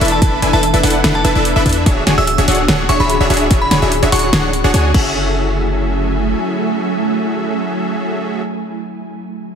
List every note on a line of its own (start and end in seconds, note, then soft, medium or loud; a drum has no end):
0.00 0.20 E1 medium
0.00 1.83 E3 medium
0.00 1.83 B3 medium
0.00 1.83 D4 medium
0.00 0.19 D4 loud
0.00 0.19 E4 medium
0.00 1.83 A4 medium
0.00 0.19 A4 medium
0.00 0.19 B4 medium
0.00 0.19 E5 loud
0.00 closed hi-hat soft
0.05 closed hi-hat medium
0.08 0.18 A5 medium
0.08 closed hi-hat medium
0.22 0.40 E1 loud
0.22 0.39 D4 medium
0.22 0.39 E4 medium
0.22 0.39 A4 medium
0.22 0.39 B4 medium
0.22 0.39 E5 loud
0.22 0.29 A5 medium
0.22 kick loud
0.22 closed hi-hat medium
0.42 0.51 E1 loud
0.42 0.52 D4 medium
0.42 0.52 E4 medium
0.42 0.52 A4 medium
0.42 0.52 B4 medium
0.42 0.52 G#5 medium
0.42 closed hi-hat medium
0.53 0.72 E1 loud
0.53 0.64 D4 medium
0.53 0.64 E4 medium
0.53 0.64 A4 medium
0.53 0.64 B4 medium
0.53 0.64 E5 medium
0.53 0.68 A5 medium
0.63 closed hi-hat medium
0.74 0.82 E1 medium
0.74 0.81 D4 medium
0.74 0.81 E4 medium
0.74 0.81 A4 medium
0.74 0.81 B4 medium
0.74 0.81 E5 medium
0.74 closed hi-hat medium
0.83 1.02 E1 medium
0.83 1.01 D4 medium
0.83 1.01 E4 medium
0.83 1.01 A4 medium
0.83 1.01 B4 medium
0.83 1.01 F#5 loud
0.83 closed hi-hat medium
0.83 open hi-hat loud
0.90 closed hi-hat medium
1.04 1.23 E1 loud
1.04 1.22 D4 medium
1.04 1.22 E4 medium
1.04 1.22 A4 medium
1.04 1.22 B4 medium
1.04 1.22 F#5 medium
1.04 snare loud
1.04 closed hi-hat medium
1.15 1.21 A5 medium
1.24 1.33 E1 loud
1.24 1.34 D4 loud
1.24 1.34 E4 medium
1.24 1.34 A4 medium
1.24 1.34 B4 medium
1.24 1.34 E5 loud
1.24 1.32 A5 medium
1.24 closed hi-hat medium
1.35 1.54 E1 loud
1.35 1.53 D4 medium
1.35 1.53 E4 medium
1.35 1.53 A4 medium
1.35 1.53 B4 medium
1.35 1.53 E5 medium
1.45 closed hi-hat medium
1.56 1.64 E1 loud
1.56 1.63 D4 medium
1.56 1.63 E4 medium
1.56 1.63 A4 medium
1.56 1.63 B4 medium
1.56 1.63 E5 loud
1.66 1.84 E2 loud
1.66 1.84 D4 loud
1.66 1.84 E4 medium
1.66 1.84 A4 medium
1.66 1.84 B4 medium
1.66 1.84 E5 loud
1.66 kick medium
1.66 closed hi-hat soft
1.69 closed hi-hat medium
1.73 closed hi-hat medium
1.86 2.05 D1 loud
1.86 4.91 D3 medium
1.86 4.91 C#4 medium
1.86 2.04 D4 medium
1.86 4.91 E4 medium
1.86 2.04 F#4 medium
1.86 4.91 F#4 medium
1.86 4.91 G#4 medium
1.86 2.04 G#4 medium
1.86 2.04 C#5 medium
1.86 2.04 E5 loud
1.86 kick loud
1.86 closed hi-hat medium
2.07 2.16 D1 loud
2.07 2.16 D4 medium
2.07 2.16 F#4 medium
2.07 2.16 G#4 medium
2.07 2.16 C#5 medium
2.07 2.16 G#5 medium
2.07 snare medium
2.07 closed hi-hat medium
2.18 2.36 D1 loud
2.18 2.28 D4 medium
2.18 2.28 F#4 medium
2.18 2.28 G#4 medium
2.18 2.28 C#5 medium
2.18 2.28 E5 medium
2.18 2.24 E6 medium
2.27 2.34 E6 medium
2.27 closed hi-hat medium
2.38 2.46 D1 loud
2.38 2.46 D4 medium
2.38 2.46 F#4 medium
2.38 2.46 G#4 medium
2.38 2.46 C#5 medium
2.38 2.46 E5 medium
2.38 closed hi-hat medium
2.48 2.66 D1 loud
2.48 2.66 D4 medium
2.48 2.66 F#4 medium
2.48 2.66 G#4 medium
2.48 2.66 C#5 medium
2.48 2.66 F#5 loud
2.48 closed hi-hat medium
2.48 open hi-hat loud
2.55 closed hi-hat medium
2.68 2.87 D1 loud
2.68 2.87 D4 medium
2.68 2.87 F#4 medium
2.68 2.87 G#4 medium
2.68 2.87 C#5 medium
2.68 2.87 F#5 medium
2.68 snare loud
2.68 closed hi-hat medium
2.89 2.98 D1 medium
2.89 2.98 D4 loud
2.89 2.98 F#4 medium
2.89 2.98 G#4 medium
2.89 2.98 C#5 medium
2.89 2.98 E5 loud
2.89 2.98 C#6 loud
2.89 closed hi-hat medium
3.00 3.18 D1 loud
3.00 3.17 D4 medium
3.00 3.17 F#4 medium
3.00 3.17 G#4 medium
3.00 3.17 C#5 medium
3.00 3.17 E5 medium
3.00 3.06 B5 medium
3.10 3.17 B5 medium
3.10 closed hi-hat medium
3.20 3.28 D1 loud
3.20 3.28 D4 medium
3.20 3.28 F#4 medium
3.20 3.28 G#4 medium
3.20 3.28 C#5 medium
3.20 3.28 E5 loud
3.30 3.49 D1 loud
3.30 3.48 D4 loud
3.30 3.48 F#4 medium
3.30 3.48 G#4 medium
3.30 3.48 C#5 medium
3.30 3.48 E5 loud
3.30 closed hi-hat soft
3.34 closed hi-hat medium
3.37 closed hi-hat medium
3.51 3.69 D1 loud
3.51 3.68 D4 medium
3.51 3.68 F#4 medium
3.51 3.68 G#4 medium
3.51 3.68 C#5 medium
3.51 3.68 E5 loud
3.51 kick loud
3.51 closed hi-hat medium
3.62 3.68 B5 medium
3.71 3.80 D1 loud
3.71 3.80 D4 medium
3.71 3.80 F#4 medium
3.71 3.80 G#4 medium
3.71 3.80 C#5 medium
3.71 3.80 G#5 medium
3.71 3.78 B5 medium
3.71 snare medium
3.71 closed hi-hat medium
3.82 4.00 D1 loud
3.82 3.93 D4 medium
3.82 3.93 F#4 medium
3.82 3.93 G#4 medium
3.82 3.93 C#5 medium
3.82 3.93 E5 medium
3.92 closed hi-hat medium
4.03 4.10 D1 loud
4.03 4.10 D4 medium
4.03 4.10 F#4 medium
4.03 4.10 G#4 medium
4.03 4.10 C#5 medium
4.03 4.10 E5 medium
4.03 closed hi-hat medium
4.12 4.31 D1 loud
4.12 4.30 D4 medium
4.12 4.30 F#4 medium
4.12 4.30 G#4 medium
4.12 4.30 C#5 medium
4.12 4.30 F#5 loud
4.12 4.19 C#6 medium
4.12 closed hi-hat medium
4.12 open hi-hat loud
4.19 4.29 C#6 medium
4.19 closed hi-hat medium
4.33 4.62 D1 loud
4.33 4.51 D4 medium
4.33 4.51 F#4 medium
4.33 4.51 G#4 medium
4.33 4.51 C#5 medium
4.33 4.51 F#5 medium
4.33 snare loud
4.33 closed hi-hat medium
4.53 closed hi-hat medium
4.64 4.72 D1 loud
4.64 4.72 D4 loud
4.64 4.72 F#4 medium
4.64 4.72 G#4 medium
4.64 4.72 C#5 medium
4.64 4.72 F#5 loud
4.74 4.92 D2 loud
4.74 4.92 D4 medium
4.74 4.92 F#4 medium
4.74 4.92 G#4 medium
4.74 4.92 C#5 medium
4.74 4.92 G#5 medium
4.74 closed hi-hat medium
4.94 6.34 F#1 medium
4.94 8.42 F#3 medium
4.94 8.42 A3 medium
4.94 8.42 C#4 medium
4.94 8.42 E4 medium
4.94 8.42 F#4 medium
4.94 8.42 G#4 medium
4.94 8.42 A4 medium
4.94 8.42 E5 loud
4.94 8.42 G#5 medium
4.94 kick loud
4.94 crash medium